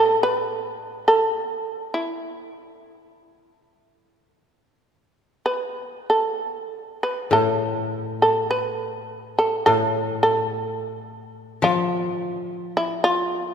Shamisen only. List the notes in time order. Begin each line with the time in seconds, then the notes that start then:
Already playing: A4
0.23 B4
1.08 A4
1.94 E4
5.46 B4
6.10 A4
7.03 B4
7.33 A4
7.91 F4
8.22 A4
8.51 B4
9.39 A4
9.66 A4
10.23 A4
11.64 F4
12.26 E4
12.77 E4
13.04 F4
13.46 E4